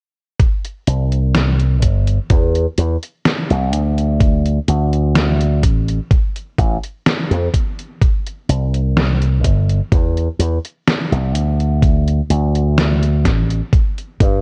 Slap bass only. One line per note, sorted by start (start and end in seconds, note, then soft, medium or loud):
0.87 1.83 C2 medium
1.83 2.18 G1 medium
2.30 2.65 E2 medium
2.78 2.96 E2 medium
3.50 3.73 C2 medium
3.73 4.58 D2 medium
4.68 5.63 D2 medium
5.63 5.98 A1 medium
6.58 6.77 A1 loud
7.31 7.47 F2 medium
8.49 9.44 C2 medium
9.44 9.79 G1 medium
9.92 10.27 E2 medium
10.39 10.57 E2 medium
11.12 11.34 C2 medium
11.34 12.20 D2 medium
12.30 13.25 D2 loud
13.25 13.60 A1 medium
14.20 14.38 G2 medium